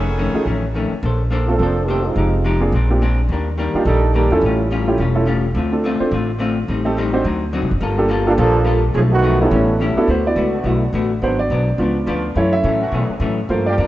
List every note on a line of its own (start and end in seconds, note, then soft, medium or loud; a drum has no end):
0.00 0.31 F1 medium
0.00 0.74 D#3 medium
0.00 0.74 C#4 medium
0.00 0.74 G#4 medium
0.00 0.74 A4 medium
0.18 0.35 F2 medium
0.18 0.36 D#3 medium
0.18 0.36 A3 medium
0.18 0.36 C#4 medium
0.34 0.44 A3 medium
0.34 0.45 C#4 medium
0.34 0.45 D#4 medium
0.34 0.45 F4 medium
0.34 0.45 G#4 medium
0.34 muted upright bass stroke soft
0.46 0.88 A1 medium
0.46 0.64 F2 soft
0.46 0.64 D#3 medium
0.46 0.65 A3 medium
0.46 0.65 C#4 medium
0.74 0.92 F2 medium
0.74 0.93 D#3 medium
0.74 0.93 A3 medium
0.74 0.93 C#4 medium
0.91 muted upright bass stroke soft
1.03 1.56 A#1 medium
1.03 1.21 A#3 medium
1.03 1.21 D4 soft
1.03 1.22 A4 medium
1.03 1.22 C5 medium
1.30 1.49 A#3 medium
1.30 1.49 D4 medium
1.30 1.49 A4 medium
1.30 1.50 C5 medium
1.47 1.58 A3 medium
1.47 1.58 A#3 medium
1.47 1.57 C4 medium
1.47 1.58 C4 medium
1.47 1.56 D4 medium
1.47 1.58 D4 medium
1.47 1.58 F4 medium
1.47 1.59 F4 medium
1.47 1.59 A4 medium
1.58 2.13 F1 medium
1.58 1.85 F3 medium
1.58 1.78 A#3 soft
1.58 1.85 C4 medium
1.58 1.85 D4 medium
1.58 1.85 A4 loud
1.62 1.78 D4 soft
1.62 1.79 A4 soft
1.62 1.79 C5 soft
1.88 2.04 D#3 medium
1.88 2.04 A3 medium
1.88 2.06 A#3 medium
1.88 2.04 C4 medium
1.88 2.06 D4 medium
1.88 2.04 G4 medium
1.88 2.06 A4 medium
1.88 2.07 C5 medium
2.05 2.45 G#3 medium
2.05 2.45 C4 medium
2.05 2.45 D#4 medium
2.05 2.45 F4 medium
2.16 2.69 F1 medium
2.16 2.34 F3 soft
2.16 2.34 G#3 soft
2.16 2.35 D#4 soft
2.16 2.35 G4 medium
2.44 2.62 F3 medium
2.44 2.62 G#3 medium
2.44 2.63 D#4 medium
2.44 2.63 G4 medium
2.60 2.71 A#3 medium
2.60 2.71 C4 medium
2.60 2.71 D4 medium
2.60 2.71 F4 medium
2.60 2.71 G#4 medium
2.72 3.26 A#1 medium
2.72 2.90 A#2 medium
2.72 2.91 G#3 medium
2.72 2.91 C4 medium
2.72 2.92 D4 medium
2.90 3.00 A#3 medium
2.90 3.00 C4 medium
2.90 3.00 D4 medium
2.90 3.00 F4 medium
2.90 3.01 G4 medium
3.02 3.19 A#2 medium
3.02 3.19 G#3 medium
3.02 3.20 C4 medium
3.02 3.20 D4 medium
3.29 3.71 D#2 medium
3.29 3.47 D#3 medium
3.29 3.48 G3 soft
3.29 3.49 A#3 medium
3.33 3.49 D4 medium
3.58 3.75 D#3 medium
3.58 3.76 G3 medium
3.58 3.76 A#3 medium
3.58 3.76 D4 medium
3.74 3.84 G3 medium
3.74 3.85 A#3 medium
3.74 3.84 D4 medium
3.74 3.85 D4 medium
3.74 3.85 D#4 medium
3.74 3.85 F4 medium
3.74 3.85 G4 medium
3.74 muted upright bass stroke soft
3.85 4.27 A#1 medium
3.85 4.04 D#3 soft
3.85 4.12 G3 medium
3.85 4.04 G3 soft
3.85 4.05 A#3 soft
3.85 4.12 D4 medium
3.85 4.05 D4 medium
3.85 4.12 D#4 medium
3.85 4.12 A4 loud
4.14 4.32 D#3 medium
4.14 4.31 D#3 medium
4.14 4.32 G3 medium
4.14 4.31 A#3 medium
4.14 4.33 A#3 medium
4.14 4.31 D4 medium
4.14 4.33 D4 medium
4.14 4.31 G4 medium
4.30 4.41 E2 medium
4.30 4.71 G3 medium
4.30 4.41 A3 medium
4.30 4.71 A3 medium
4.30 4.42 C#4 medium
4.30 4.71 C#4 medium
4.30 4.42 E4 medium
4.30 4.71 E4 medium
4.30 4.42 F4 medium
4.30 4.42 A4 medium
4.41 4.96 A1 medium
4.41 4.61 A2 soft
4.41 4.61 G3 soft
4.46 4.62 C#4 soft
4.46 4.62 F4 medium
4.71 4.88 A2 medium
4.71 4.89 G3 medium
4.71 4.89 C#4 medium
4.71 4.89 F4 medium
4.87 4.98 A3 medium
4.87 4.98 C#4 medium
4.87 4.98 E4 medium
4.87 4.98 F4 medium
4.87 4.98 G4 medium
4.98 5.52 E1 medium
4.98 5.16 A2 soft
4.98 5.17 G3 medium
4.98 5.17 C#4 medium
4.98 5.18 F4 medium
5.15 5.25 A3 medium
5.15 5.26 C#4 medium
5.15 5.26 E4 medium
5.15 5.26 F4 medium
5.15 5.26 A4 medium
5.26 5.44 A2 medium
5.26 5.45 G3 medium
5.26 5.45 C#4 medium
5.26 5.46 F4 medium
5.55 5.97 D2 medium
5.55 5.73 D3 medium
5.55 5.74 A3 medium
5.55 5.74 C4 medium
5.55 5.75 F4 medium
5.72 5.83 A3 medium
5.72 5.83 C4 medium
5.72 5.83 D4 medium
5.72 5.83 F4 medium
5.72 5.83 A4 medium
5.84 6.02 D3 medium
5.84 6.02 A3 medium
5.84 6.03 C4 medium
5.84 6.03 F4 medium
6.00 6.11 A3 medium
6.00 6.11 C4 medium
6.00 6.11 D4 medium
6.00 6.11 F4 medium
6.00 6.11 C5 medium
6.00 muted upright bass stroke soft
6.11 6.65 A1 medium
6.11 6.30 D3 medium
6.11 6.30 A3 medium
6.11 6.31 C4 medium
6.11 6.31 F4 medium
6.38 6.57 D3 medium
6.38 6.58 A3 medium
6.38 6.58 C4 medium
6.38 6.59 F4 medium
6.68 7.22 A1 medium
6.68 6.86 A2 medium
6.68 6.87 G3 medium
6.68 6.87 C4 medium
6.68 6.88 D#4 medium
6.85 6.95 A3 medium
6.85 6.96 C4 medium
6.85 6.96 D#4 medium
6.85 6.96 G4 medium
6.85 6.96 A4 medium
6.97 7.15 A2 medium
6.97 7.15 G3 medium
6.97 7.15 C4 medium
6.97 7.16 D#4 medium
7.13 7.24 C4 medium
7.13 7.24 D4 medium
7.13 7.24 D#4 medium
7.13 7.24 F#4 medium
7.13 7.24 C5 medium
7.24 7.60 D2 medium
7.24 7.43 D3 medium
7.24 7.43 F#3 medium
7.24 7.44 C4 medium
7.24 7.44 D#4 medium
7.53 7.71 D3 medium
7.53 7.71 F#3 medium
7.53 7.72 C4 medium
7.53 7.72 D#4 medium
7.62 7.71 C2 medium
7.71 7.80 F#1 medium
7.81 8.35 G1 medium
7.81 7.99 G3 medium
7.81 8.00 A#3 medium
7.81 8.00 F4 medium
7.81 8.00 A4 medium
7.98 8.09 A#3 medium
7.98 8.09 D4 medium
7.98 8.09 F4 medium
7.98 8.09 G4 medium
7.98 8.09 A4 medium
8.08 8.27 G3 medium
8.08 8.28 A#3 medium
8.08 8.28 F4 medium
8.08 8.29 A4 medium
8.26 8.31 A3 medium
8.26 8.37 A#3 medium
8.26 8.32 A#3 medium
8.26 8.32 D4 medium
8.26 8.37 D4 medium
8.26 8.31 F4 loud
8.26 8.37 F4 medium
8.26 8.37 G4 medium
8.26 8.38 A4 medium
8.36 8.92 A#1 loud
8.36 8.80 F3 loud
8.36 8.56 G3 soft
8.36 8.79 A#3 medium
8.36 8.56 A#3 medium
8.36 8.80 D4 loud
8.36 8.57 F4 medium
8.36 8.80 A4 loud
8.36 8.57 A4 medium
8.64 8.84 G3 medium
8.64 8.84 A#3 medium
8.64 8.85 F4 medium
8.64 8.85 A4 medium
8.94 9.49 B1 medium
8.94 9.12 B2 medium
8.94 9.02 F3 medium
8.94 9.13 F3 soft
8.94 9.02 A3 medium
8.94 9.13 A3 soft
8.94 9.02 C#4 medium
8.94 9.14 D#4 soft
8.94 9.02 G#4 loud
9.11 9.38 D#3 medium
9.11 9.38 A3 medium
9.11 9.38 B3 medium
9.11 9.38 F#4 loud
9.22 9.41 B2 medium
9.22 9.41 F3 medium
9.22 9.42 A3 medium
9.22 9.42 D#4 medium
9.41 9.46 F#3 medium
9.41 9.46 A3 medium
9.41 9.78 B3 medium
9.41 9.46 B3 medium
9.41 9.79 C#4 medium
9.41 9.46 D#4 medium
9.41 9.78 E4 medium
9.41 9.79 G4 medium
9.41 9.79 A4 medium
9.51 9.93 A1 medium
9.51 9.69 A2 soft
9.51 9.94 E3 medium
9.51 9.94 G3 medium
9.51 9.70 G3 soft
9.51 9.94 A3 medium
9.51 9.94 C#4 medium
9.51 9.70 C#4 soft
9.51 9.71 E4 soft
9.80 9.98 A2 medium
9.80 9.98 G3 medium
9.80 9.99 C#4 medium
9.80 9.99 E4 medium
9.96 10.08 B3 medium
9.96 10.07 D4 medium
9.96 10.08 E4 medium
9.96 10.08 F#4 medium
9.96 10.08 A4 medium
9.96 muted upright bass stroke soft
10.08 10.35 D2 medium
10.08 10.26 D3 soft
10.08 10.27 A3 soft
10.08 10.27 B3 soft
10.08 10.28 F#4 soft
10.08 10.26 C5 medium
10.26 10.43 B3 soft
10.26 10.44 E4 soft
10.26 10.44 F#4 soft
10.26 10.63 D5 medium
10.36 10.63 C#2 medium
10.36 10.54 D3 medium
10.36 10.55 A3 medium
10.36 10.55 B3 medium
10.36 10.55 F#4 medium
10.52 10.91 D3 medium
10.52 10.91 A3 medium
10.52 10.91 B3 medium
10.52 10.91 F#4 medium
10.64 10.92 B1 medium
10.64 10.82 D3 soft
10.64 10.83 A3 medium
10.64 10.83 B3 medium
10.64 10.81 B3 soft
10.64 10.81 E4 soft
10.64 10.81 F#4 soft
10.64 10.84 F#4 soft
10.93 11.21 A1 medium
10.93 11.12 D3 medium
10.93 11.12 A3 medium
10.93 11.12 B3 medium
10.93 11.12 F#4 medium
11.22 11.50 G#1 medium
11.22 11.40 G#2 soft
11.22 11.40 F#3 soft
11.22 11.65 B3 soft
11.22 11.41 B3 soft
11.22 11.65 D4 soft
11.22 11.41 D4 medium
11.22 11.66 F#4 soft
11.22 11.39 C5 medium
11.39 11.76 D5 medium
11.50 11.78 B1 medium
11.50 11.69 G#2 medium
11.50 11.69 F#3 medium
11.50 11.69 B3 medium
11.50 11.69 D4 medium
11.78 12.06 C#2 medium
11.78 11.97 C#3 soft
11.78 11.97 F3 medium
11.78 12.32 B3 soft
11.78 11.98 B3 soft
11.78 12.32 D4 soft
11.78 12.33 F4 soft
11.82 11.99 D4 medium
12.06 12.35 D2 medium
12.06 12.25 C#3 medium
12.06 12.35 D3 medium
12.06 12.25 F3 medium
12.06 12.35 B3 medium
12.06 12.26 B3 medium
12.06 12.26 D4 medium
12.06 12.35 F4 medium
12.35 12.53 F#2 soft
12.35 12.63 F#2 medium
12.35 12.54 E3 soft
12.35 12.79 A3 soft
12.35 12.54 A3 soft
12.35 12.79 C#4 soft
12.35 12.55 C#4 soft
12.35 12.79 E4 medium
12.35 12.53 C#5 medium
12.53 12.90 E5 medium
12.63 12.82 F#2 medium
12.63 12.91 A2 medium
12.63 12.82 E3 medium
12.63 12.82 A3 medium
12.63 12.83 C#4 medium
12.81 13.18 E3 medium
12.81 13.19 A3 medium
12.81 13.18 C#4 medium
12.81 13.19 F#4 loud
12.91 13.10 F#2 medium
12.91 13.08 B2 medium
12.91 13.10 E3 medium
12.91 13.11 A3 medium
12.91 13.11 C#4 medium
13.09 muted upright bass stroke soft
13.20 13.38 F#2 medium
13.20 13.48 A2 medium
13.20 13.39 E3 medium
13.20 13.39 A3 medium
13.20 13.40 C#4 medium
13.49 13.67 G2 soft
13.49 13.77 G2 medium
13.49 13.67 F3 soft
13.49 13.87 A3 soft
13.49 13.87 A#3 soft
13.49 13.68 A#3 soft
13.49 13.69 D4 soft
13.49 13.87 F4 medium
13.49 13.66 C5 medium
13.66 13.74 F3 medium
13.66 13.74 A#3 medium
13.66 13.74 D4 medium
13.66 13.74 G4 medium
13.66 13.87 D5 medium
13.78 13.87 F2 medium
13.78 13.87 G2 medium
13.78 13.87 F3 medium
13.78 13.87 A#3 medium
13.78 13.87 D4 medium